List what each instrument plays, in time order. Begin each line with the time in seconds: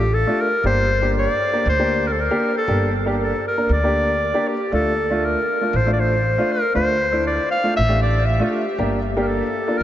Already playing: upright bass A1, clarinet G4
0.14 clarinet A4
0.27 upright piano A3 D4 F4
0.41 clarinet A#4
0.63 upright bass G1, upright piano A#3 D4 G4, clarinet C5
1.02 upright piano A#3 D4 G4
1.18 clarinet D5
1.53 upright piano A#3 D4 G4
1.66 upright bass D2, clarinet C5
1.79 upright piano A#3 D4 G4
2.07 clarinet A#4
2.12 clarinet A4
2.21 clarinet A#4
2.31 upright piano A#3 D4 G4
2.57 clarinet A4
2.68 upright bass G1, upright piano A#3 D4 G4
3.06 upright piano A#3 D4 G4
3.24 clarinet A4
3.48 clarinet A#4
3.58 upright piano A#3 D4 A#4
3.69 upright bass D2, clarinet D5
3.84 upright piano A#3 D4 G4
4.34 upright piano A#3 D4 G4
4.48 clarinet G4
4.72 upright bass D2, upright piano A3 D4 F4, clarinet A4
5.10 upright piano A3 D4 F4
5.25 clarinet A#4
5.61 upright piano A3 D4 F4
5.73 upright bass A1, clarinet C5
5.86 upright piano A3 D4 F4
5.93 clarinet D5
6.00 clarinet C5
6.38 upright piano A3 D4 F4
6.52 clarinet A#4
6.74 upright bass D2, upright piano A3 D4 F4, clarinet C5
7.12 upright piano A3 D4 E4
7.27 clarinet D5
7.51 clarinet F5
7.63 upright piano A3 D4 F4
7.76 upright bass A1, clarinet E5
7.89 upright piano A3 D4 G4
8.02 clarinet D5
8.26 clarinet E5
8.40 upright piano A3 D4 F4
8.44 clarinet A4
8.51 clarinet G4
8.78 upright bass G1, upright piano A#3 D4 G4
9.17 upright piano A#3 D4 G4
9.22 clarinet A#4
9.27 clarinet A4
9.68 upright piano A#3 D4 F4
9.78 clarinet A#4